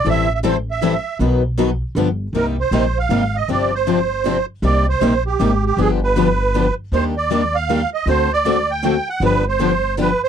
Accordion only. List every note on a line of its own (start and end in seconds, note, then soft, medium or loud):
0.10 0.33 E5 loud
0.35 0.39 E5 medium
0.47 0.57 C5 medium
0.71 1.18 E5 medium
2.36 2.46 A#4 medium
2.60 2.98 C5 medium
2.99 3.36 F5 medium
3.36 3.49 D#5 medium
3.51 3.74 D5 medium
3.75 4.46 C5 medium
4.66 4.86 D5 medium
4.89 5.24 C5 medium
5.27 5.65 G4 medium
5.66 5.79 G4 medium
5.81 5.90 G#4 medium
6.03 6.74 B4 medium
6.94 7.04 C5 loud
7.17 7.56 D5 medium
7.55 7.90 F5 loud
7.94 8.08 D#5 medium
8.09 8.32 C5 loud
8.33 8.71 D5 loud
8.71 9.09 G5 medium
9.09 9.23 F#5 medium
9.25 9.45 B4 loud
9.49 9.96 C5 medium
10.01 10.21 B4 medium
10.24 10.29 C5 medium